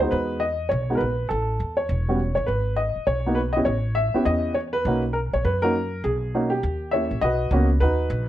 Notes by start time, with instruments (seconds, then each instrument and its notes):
0.00 upright piano G#3 B3 D#4 F#4 C5
0.11 upright bass E2, upright piano B4
0.40 upright piano D#5
0.69 upright bass B1, upright piano C#5
0.90 upright piano G#3 B3 D#4 F#4
0.95 upright piano A#4 B4
1.01 upright bass A#1
1.29 upright bass A1, upright piano A4
1.60 upright bass E2
1.77 upright piano C#5
1.89 upright bass E1
2.09 upright piano G3 B3 C#4 F#4
2.35 upright bass A1, upright piano C#5
2.46 upright bass G#1, upright piano B4
2.77 upright piano D#5
2.96 muted upright bass stroke
3.07 upright bass B1, upright piano C#5
3.26 upright piano A#3 B3 D#4 F#4
3.35 upright piano B4
3.53 upright piano B3 E4 D#5
3.57 upright piano C#4 G4
3.65 upright bass A1, upright piano C#5
3.95 upright piano E5
4.14 upright piano B3 C#4 E4 G4, muted upright bass stroke
4.25 upright bass E2, upright piano D#5
4.54 upright piano C#5
4.73 upright piano B4
4.85 upright bass B1, upright piano A#3 C#4 D#4 F#4
5.13 upright piano A#4
5.33 upright bass A#1, upright piano C#5
5.44 upright bass F#2, upright piano B4
5.62 upright piano A#3 C#4 D#4 F#4 A#4
6.04 upright bass B1, upright piano G#4
6.35 upright piano A#3 C#4 D#4 F#4
6.50 upright piano G4
6.63 upright bass D#2
6.91 upright piano A#3 C#4 E4 G4 C#5 E5
7.11 upright bass A#1
7.21 upright bass B1, upright piano F#4 B4 D#5
7.51 upright bass C#2, upright piano A#3 B3 C#4 F#4
7.80 upright bass D#2, upright piano D#4 F#4 B4
8.10 upright bass A#1